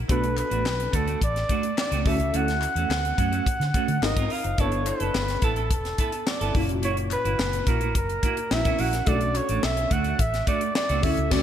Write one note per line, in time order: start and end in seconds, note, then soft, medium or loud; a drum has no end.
0.08 0.41 B1 loud
0.08 0.30 A3 medium
0.08 2.01 B3 medium
0.08 2.02 D4 medium
0.08 0.23 D4 medium
0.08 2.02 F#4 medium
0.08 0.21 F#4 medium
0.08 2.02 A4 medium
0.08 0.36 B4 medium
0.08 kick loud
0.08 closed hi-hat medium
0.22 muted clean electric guitar stroke soft
0.22 closed hi-hat soft
0.37 0.97 B4 loud
0.37 muted clean electric guitar stroke soft
0.37 clap medium
0.37 closed hi-hat medium
0.50 0.65 A1 medium
0.50 0.64 A3 soft
0.50 0.65 D4 medium
0.50 0.65 F#4 medium
0.50 closed hi-hat medium
0.65 0.87 B1 medium
0.65 muted clean electric guitar stroke soft
0.65 snare loud
0.65 clap medium
0.79 muted clean electric guitar stroke soft
0.79 closed hi-hat soft
0.92 1.15 D2 medium
0.92 1.07 A3 medium
0.92 1.06 D4 medium
0.92 1.05 F#4 medium
0.92 1.23 A4 medium
0.92 kick medium
0.92 closed hi-hat medium
1.06 1.19 A3 soft
1.06 1.20 D4 medium
1.06 1.20 F#4 medium
1.06 closed hi-hat soft
1.21 1.43 A1 medium
1.21 1.75 D5 medium
1.21 muted clean electric guitar stroke soft
1.21 kick medium
1.21 closed hi-hat medium
1.35 muted clean electric guitar stroke medium
1.35 snare soft
1.35 closed hi-hat soft
1.49 1.70 A3 medium
1.49 1.63 D4 medium
1.49 1.62 F#4 loud
1.49 kick medium
1.49 closed hi-hat medium
1.63 muted clean electric guitar stroke soft
1.63 closed hi-hat medium
1.78 2.09 D5 medium
1.78 muted clean electric guitar stroke soft
1.78 snare loud
1.78 clap medium
1.91 2.02 C#2 medium
1.91 2.04 A3 medium
1.91 2.06 D4 medium
1.91 2.06 F#4 medium
1.91 closed hi-hat medium
2.04 2.21 D2 loud
2.04 2.22 A3 medium
2.04 3.97 C#4 medium
2.04 2.20 C#4 medium
2.04 3.98 E4 medium
2.04 3.98 F#4 medium
2.04 2.18 F#4 medium
2.04 3.99 A4 medium
2.04 2.37 E5 medium
2.04 kick loud
2.04 open hi-hat medium
2.19 2.30 C#2 medium
2.19 muted clean electric guitar stroke soft
2.19 closed hi-hat medium
2.33 2.65 D2 medium
2.33 2.55 A3 medium
2.33 2.48 C#4 medium
2.33 2.46 F#4 medium
2.33 4.06 F#5 loud
2.33 closed hi-hat medium
2.48 muted clean electric guitar stroke soft
2.48 snare soft
2.48 closed hi-hat soft
2.61 muted clean electric guitar stroke soft
2.61 clap medium
2.61 closed hi-hat medium
2.75 2.86 E2 medium
2.75 2.89 A3 soft
2.75 2.89 C#4 medium
2.75 2.90 F#4 medium
2.75 closed hi-hat medium
2.89 3.11 D2 medium
2.89 muted clean electric guitar stroke soft
2.89 snare loud
2.89 clap medium
3.04 muted clean electric guitar stroke soft
3.04 closed hi-hat soft
3.17 3.39 F#2 medium
3.17 3.32 A3 medium
3.17 3.31 C#4 medium
3.17 3.30 F#4 medium
3.17 kick medium
3.17 closed hi-hat medium
3.31 3.45 A3 medium
3.31 3.45 C#4 medium
3.31 3.46 F#4 medium
3.31 closed hi-hat soft
3.46 muted clean electric guitar stroke soft
3.46 kick medium
3.46 closed hi-hat loud
3.60 3.71 D3 medium
3.60 muted clean electric guitar stroke soft
3.60 snare soft
3.60 closed hi-hat soft
3.74 3.95 A3 medium
3.74 3.89 C#4 medium
3.74 3.87 F#4 medium
3.74 kick medium
3.74 closed hi-hat medium
3.88 3.99 D3 medium
3.88 muted clean electric guitar stroke soft
3.88 closed hi-hat medium
4.02 4.13 G#1 medium
4.02 4.58 C4 medium
4.02 4.59 D#4 medium
4.02 4.59 F4 medium
4.02 4.59 A#4 medium
4.02 4.34 D#5 medium
4.02 muted clean electric guitar stroke soft
4.02 snare loud
4.02 clap medium
4.16 4.27 G#2 medium
4.16 4.29 C4 medium
4.16 4.30 F4 medium
4.16 4.31 A#4 medium
4.16 kick loud
4.16 closed hi-hat medium
4.30 4.47 C4 medium
4.30 4.44 F4 medium
4.30 4.43 A#4 medium
4.30 4.62 F5 medium
4.30 open hi-hat medium
4.44 4.55 F#1 medium
4.44 muted clean electric guitar stroke soft
4.44 closed hi-hat medium
4.58 4.90 G1 loud
4.58 6.51 B3 medium
4.58 4.80 B3 medium
4.58 6.51 D4 medium
4.58 4.72 E4 medium
4.58 6.51 E4 medium
4.58 4.71 A4 medium
4.58 6.52 A4 medium
4.58 4.89 C#5 medium
4.58 kick loud
4.58 closed hi-hat medium
4.72 muted clean electric guitar stroke soft
4.72 closed hi-hat soft
4.86 5.46 B4 medium
4.86 muted clean electric guitar stroke soft
4.86 clap medium
4.86 closed hi-hat medium
5.00 5.11 F#1 medium
5.00 5.13 B3 soft
5.00 5.14 E4 soft
5.00 5.15 A4 medium
5.00 closed hi-hat medium
5.14 5.36 G1 medium
5.14 muted clean electric guitar stroke soft
5.14 snare loud
5.14 clap medium
5.28 muted clean electric guitar stroke soft
5.28 snare soft
5.28 closed hi-hat soft
5.42 5.70 A1 medium
5.42 5.57 B3 medium
5.42 5.57 E4 medium
5.42 5.56 A4 medium
5.42 5.72 A4 medium
5.42 kick medium
5.42 closed hi-hat medium
5.56 5.69 B3 soft
5.56 5.70 E4 medium
5.56 5.71 A4 medium
5.56 closed hi-hat soft
5.70 5.92 E1 loud
5.70 6.29 A4 medium
5.70 muted clean electric guitar stroke soft
5.70 kick medium
5.70 closed hi-hat medium
5.85 muted clean electric guitar stroke soft
5.85 snare soft
5.85 closed hi-hat soft
5.98 6.20 B3 medium
5.98 6.13 E4 medium
5.98 6.11 A4 medium
5.98 kick medium
5.98 closed hi-hat medium
6.12 muted clean electric guitar stroke soft
6.12 closed hi-hat soft
6.26 6.55 D5 medium
6.26 muted clean electric guitar stroke soft
6.26 snare loud
6.26 clap medium
6.40 6.51 G1 medium
6.40 6.55 B3 medium
6.40 6.54 E4 medium
6.40 6.62 A4 medium
6.40 closed hi-hat soft
6.54 6.69 F#1 loud
6.54 8.47 A#2 medium
6.54 6.71 A#3 medium
6.54 8.48 C#4 medium
6.54 6.69 E4 medium
6.54 8.48 E4 medium
6.54 6.67 F#4 medium
6.54 8.48 F#4 medium
6.54 kick loud
6.54 open hi-hat medium
6.69 6.82 F1 medium
6.69 muted clean electric guitar stroke soft
6.69 closed hi-hat medium
6.82 7.14 F#1 medium
6.82 7.04 A#3 medium
6.82 6.97 E4 medium
6.82 6.96 F#4 medium
6.82 6.97 C#5 medium
6.82 closed hi-hat medium
6.97 muted clean electric guitar stroke soft
6.97 closed hi-hat soft
7.10 7.70 B4 loud
7.10 muted clean electric guitar stroke soft
7.10 clap medium
7.10 closed hi-hat medium
7.25 7.36 G1 medium
7.25 7.38 A#3 soft
7.25 7.39 E4 medium
7.25 7.39 F#4 medium
7.25 closed hi-hat medium
7.39 7.60 F#1 medium
7.39 muted clean electric guitar stroke soft
7.39 snare loud
7.39 clap medium
7.53 muted clean electric guitar stroke soft
7.53 closed hi-hat medium
7.67 7.95 A#1 medium
7.67 7.82 A#3 medium
7.67 7.81 E4 medium
7.67 7.80 F#4 medium
7.67 7.96 A#4 medium
7.67 kick medium
7.67 closed hi-hat medium
7.81 7.94 A#3 soft
7.81 7.95 E4 soft
7.81 7.95 F#4 medium
7.81 closed hi-hat soft
7.95 8.16 F#1 medium
7.95 8.54 A#4 medium
7.95 muted clean electric guitar stroke soft
7.95 kick medium
7.95 closed hi-hat medium
8.09 muted clean electric guitar stroke soft
8.09 closed hi-hat soft
8.23 8.44 A#3 medium
8.23 8.37 E4 medium
8.23 8.36 F#4 medium
8.23 kick medium
8.23 closed hi-hat medium
8.37 muted clean electric guitar stroke soft
8.37 closed hi-hat medium
8.51 8.72 A#1 medium
8.51 9.07 A#3 soft
8.51 9.05 C#4 soft
8.51 9.08 E4 soft
8.51 9.07 F#4 medium
8.51 8.82 E5 loud
8.51 muted clean electric guitar stroke soft
8.51 snare loud
8.51 clap medium
8.64 8.77 A#3 medium
8.64 8.78 E4 medium
8.64 8.79 F#4 medium
8.64 kick medium
8.64 closed hi-hat soft
8.79 9.00 A#1 medium
8.79 8.96 A#3 medium
8.79 8.93 E4 medium
8.79 8.91 F#4 medium
8.79 9.09 F#5 medium
8.79 open hi-hat medium
8.93 muted clean electric guitar stroke soft
8.93 snare soft
8.93 closed hi-hat medium
9.06 9.39 B1 loud
9.06 10.99 A3 medium
9.06 9.28 A3 medium
9.06 10.99 C#4 medium
9.06 9.21 D4 medium
9.06 11.00 D4 medium
9.06 9.19 F#4 medium
9.06 11.00 F#4 medium
9.06 9.38 D5 loud
9.06 kick loud
9.06 closed hi-hat medium
9.21 muted clean electric guitar stroke soft
9.21 closed hi-hat soft
9.35 9.66 C#5 medium
9.35 muted clean electric guitar stroke soft
9.35 clap medium
9.35 closed hi-hat medium
9.49 9.60 A1 medium
9.49 9.62 A3 soft
9.49 9.62 D4 medium
9.49 9.63 F#4 medium
9.49 closed hi-hat medium
9.63 9.84 B1 medium
9.63 9.94 E5 loud
9.63 snare loud
9.63 clap medium
9.77 muted clean electric guitar stroke soft
9.77 closed hi-hat medium
9.90 10.12 D2 medium
9.90 10.05 A3 medium
9.90 10.04 D4 medium
9.90 10.03 F#4 medium
9.90 10.22 F#5 loud
9.90 kick medium
9.90 closed hi-hat medium
10.04 10.17 A3 medium
10.04 10.18 D4 medium
10.04 10.19 F#4 medium
10.04 closed hi-hat soft
10.19 10.40 A1 medium
10.19 10.47 E5 medium
10.19 muted clean electric guitar stroke soft
10.19 kick medium
10.19 closed hi-hat medium
10.33 muted clean electric guitar stroke medium
10.33 snare soft
10.33 closed hi-hat soft
10.47 10.68 A3 medium
10.47 10.61 D4 loud
10.47 10.60 F#4 loud
10.47 10.74 D5 medium
10.47 kick medium
10.47 closed hi-hat medium
10.61 muted clean electric guitar stroke soft
10.61 closed hi-hat medium
10.75 11.05 D5 loud
10.75 muted clean electric guitar stroke soft
10.75 snare loud
10.75 clap medium
10.89 11.00 C#2 medium
10.89 11.02 A3 medium
10.89 11.04 D4 medium
10.89 11.04 F#4 medium
10.89 closed hi-hat medium
11.02 11.14 D2 loud
11.02 11.29 A3 medium
11.02 11.20 A3 medium
11.02 11.29 C#4 medium
11.02 11.17 C#4 medium
11.02 11.31 E4 medium
11.02 11.31 F#4 medium
11.02 11.16 F#4 medium
11.02 11.34 E5 medium
11.02 kick loud
11.02 open hi-hat medium
11.17 11.28 C#2 medium
11.17 muted clean electric guitar stroke soft
11.17 closed hi-hat medium
11.30 11.43 D2 loud
11.30 11.43 A3 loud
11.30 11.43 C#4 loud
11.30 11.43 F#4 loud
11.30 11.43 D5 medium
11.30 kick loud
11.30 snare loud
11.30 crash medium